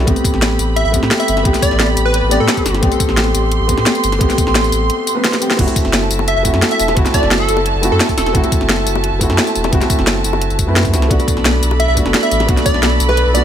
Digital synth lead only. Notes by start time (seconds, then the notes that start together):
0.76 E5
0.85 E5
1.20 E5
1.62 D5
2.05 B4
2.31 D5
2.40 A4
6.28 E5
6.37 E5
6.72 E5
7.14 D5
7.40 A4
7.92 A4
8.18 A4
11.80 E5
11.88 E5
12.23 E5
12.66 D5
13.09 B4
13.34 D5